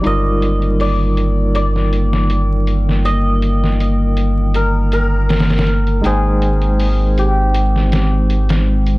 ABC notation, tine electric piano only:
X:1
M:4/4
L:1/8
Q:"Swing 16ths" 1/4=80
K:Eb
V:1 name="Tine electric piano"
[G,EFB]8- | [G,EFB]8 | [A,Ecg]8 |]